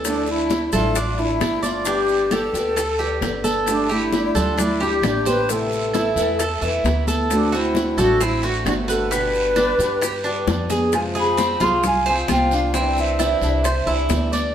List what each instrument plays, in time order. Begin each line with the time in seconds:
Already playing: upright bass D2, cuban tres A4
0.04 steel-string acoustic guitar D3 F3 A3 D4 E4, flute D4, high bongo, high conga, long guiro, claves, maracas
0.27 flute E4, high conga, maracas
0.50 steel-string acoustic guitar F3 A3 D4 E4, high bongo, high conga, short guiro, maracas
0.72 upright bass A1, steel-string acoustic guitar F3 A3 D4 E4, flute F4, cuban tres A4, high conga, low conga, short guiro, claves, maracas
0.95 cuban tres D4, muted steel-string acoustic guitar stroke, high bongo, high conga, long guiro, maracas
1.18 steel-string acoustic guitar F3 A3 D4 E4, flute E4, high conga, maracas
1.40 upright bass G1, steel-string acoustic guitar F3 A3 D4 E4, high bongo, low bongo, high conga, short guiro, claves, maracas
1.63 flute F4, cuban tres D5, high conga, short guiro, maracas
1.85 steel-string acoustic guitar D3 G3 B3 G4, cuban tres D4, flute G4, high bongo, high conga, long guiro, maracas
2.09 high bongo, high conga, maracas
2.31 steel-string acoustic guitar D3 G3 B3 G4, cuban tres G4, flute A4, high bongo, high conga, short guiro, claves, maracas
2.53 upright bass D2, steel-string acoustic guitar G3 B3 G4, high bongo, high conga, short guiro, maracas
2.76 cuban tres A4, muted steel-string acoustic guitar stroke, high bongo, high conga, long guiro, claves, maracas
2.99 steel-string acoustic guitar G3 B3 G4, cuban tres G4, high bongo, high conga, maracas
3.21 upright bass G1, steel-string acoustic guitar D3 G3 B3 G4, high bongo, low bongo, high conga, short guiro, maracas
3.44 cuban tres A4, high conga, short guiro, maracas
3.66 steel-string acoustic guitar D3 G3 D4 G4, nylon-string guitar A3, flute D4, high bongo, high conga, long guiro, claves, maracas
3.89 nylon-string guitar A3, flute E4, cuban tres G4, high conga, maracas
4.12 steel-string acoustic guitar D3 G3 D4 G4, high bongo, high conga, short guiro, maracas
4.35 upright bass D2, steel-string acoustic guitar G3 D4 G4, nylon-string guitar D4, flute F4, cuban tres A4, high conga, low conga, short guiro, claves, maracas
4.58 nylon-string guitar A3, cuban tres D4, flute E4, muted steel-string acoustic guitar stroke, high bongo, high conga, low conga, long guiro, maracas
4.80 steel-string acoustic guitar G3 D4 G4, nylon-string guitar E4, cuban tres G4, flute G4, high conga, maracas
5.02 upright bass A1, steel-string acoustic guitar D3 G3 D4 G4, nylon-string guitar D4, flute G4, high bongo, low bongo, high conga, short guiro, claves, maracas
5.26 nylon-string guitar G4, flute B4, cuban tres C5, high conga, short guiro, maracas
5.48 steel-string acoustic guitar C3 E3 A3 B3 E4, nylon-string guitar E4, flute A4, high bongo, high conga, long guiro, maracas
5.72 high bongo, high conga, maracas
5.94 steel-string acoustic guitar E3 A3 B3 E4, cuban tres E4, high bongo, high conga, short guiro, claves, maracas
6.16 upright bass E2, steel-string acoustic guitar E3 A3 B3 E4, high bongo, high conga, short guiro, maracas
6.39 cuban tres A4, muted steel-string acoustic guitar stroke, high bongo, high conga, long guiro, claves, maracas
6.62 upright bass E2, steel-string acoustic guitar E3 A3 B3 E4, cuban tres E4, high bongo, high conga, maracas
6.84 upright bass D2, steel-string acoustic guitar E3 A3 B3 E4, high bongo, low bongo, high conga, short guiro, maracas
7.07 cuban tres A4, high conga, short guiro, maracas
7.30 steel-string acoustic guitar D3 A3 C4 F#4, nylon-string guitar A3, flute D4, high bongo, long guiro, claves, maracas
7.52 nylon-string guitar C4, flute E4, cuban tres F#4, high conga, maracas
7.75 steel-string acoustic guitar D3 A3 C4 F#4, high bongo, high conga, short guiro, maracas
7.97 upright bass A1, steel-string acoustic guitar A3 C4 F#4, nylon-string guitar D4, flute F#4, cuban tres A4, high conga, low conga, short guiro, claves, maracas
8.20 cuban tres C4, nylon-string guitar C4, flute E4, muted steel-string acoustic guitar stroke, high bongo, high conga, long guiro, maracas
8.43 steel-string acoustic guitar A3 C4 F#4, nylon-string guitar D4, cuban tres F#4, flute F#4, high conga, maracas
8.65 upright bass G1, steel-string acoustic guitar D3 A3 C4 F#4, nylon-string guitar D4, flute F#4, high bongo, low bongo, high conga, short guiro, claves, maracas
8.88 nylon-string guitar F#4, flute A4, cuban tres B4, short guiro, maracas
9.11 steel-string acoustic guitar B2 D3 G3 B3 G4, cuban tres B3, nylon-string guitar G4, flute B4, high bongo, high conga, long guiro, maracas
9.34 high bongo, high conga, maracas
9.56 steel-string acoustic guitar D3 G3 B3 G4, cuban tres D4, high bongo, high conga, short guiro, claves, maracas
9.78 upright bass G2, steel-string acoustic guitar D3 G3 B3 G4, high bongo, high conga, short guiro, maracas
10.01 cuban tres G4, muted steel-string acoustic guitar stroke, high bongo, high conga, long guiro, claves, maracas
10.24 steel-string acoustic guitar D3 G3 B3 G4, cuban tres D4, high bongo, high conga, maracas
10.46 upright bass F2, steel-string acoustic guitar D3 G3 B3 G4, high bongo, high conga, short guiro, maracas
10.70 cuban tres G#4, low bongo, high conga, short guiro, maracas
10.92 steel-string acoustic guitar C3 F3 G#3 C4 F4, nylon-string guitar F4, flute G#5, high bongo, high conga, long guiro, claves, maracas
11.15 cuban tres G#4, nylon-string guitar G#4, flute B5, high bongo, high conga, maracas
11.37 steel-string acoustic guitar F3 G#3 C4 F4, cuban tres C4, high bongo, high conga, short guiro, maracas
11.60 upright bass C2, steel-string acoustic guitar F3 G#3 C4 F4, cuban tres F4, nylon-string guitar G#4, flute C6, high conga, low conga, short guiro, claves, maracas
11.83 nylon-string guitar F4, flute G#5, muted steel-string acoustic guitar stroke, high bongo, high conga, low conga, long guiro, maracas
12.05 steel-string acoustic guitar F3 G#3 C4 F4, cuban tres C4, nylon-string guitar F4, flute G#5, high bongo, high conga, maracas
12.28 upright bass C2, steel-string acoustic guitar F3 G#3 C4 F4, nylon-string guitar C4, cuban tres F4, flute G5, high bongo, low bongo, high conga, short guiro, claves, maracas
12.51 nylon-string guitar D4, flute F5, high bongo, high conga, short guiro, maracas
12.74 steel-string acoustic guitar C3 E3 G3 D4 E4, cuban tres C4, nylon-string guitar E4, flute G5, high bongo, high conga, long guiro, maracas
12.97 nylon-string guitar C4, flute E5, high bongo, high conga, maracas
13.19 steel-string acoustic guitar E3 G3 D4 E4, nylon-string guitar C4, cuban tres E4, flute E5, high bongo, high conga, short guiro, claves, maracas
13.41 upright bass C2, steel-string acoustic guitar E3 G3 D4 E4, high conga, short guiro, maracas
13.64 cuban tres C5, muted steel-string acoustic guitar stroke, high bongo, high conga, long guiro, claves, maracas
13.86 upright bass C2, steel-string acoustic guitar E3 G3 D4 E4, cuban tres E4, high conga, maracas
14.09 upright bass D2, steel-string acoustic guitar E3 G3 D4 E4, high bongo, low bongo, high conga, short guiro, maracas
14.32 cuban tres D5, high bongo, high conga, short guiro, maracas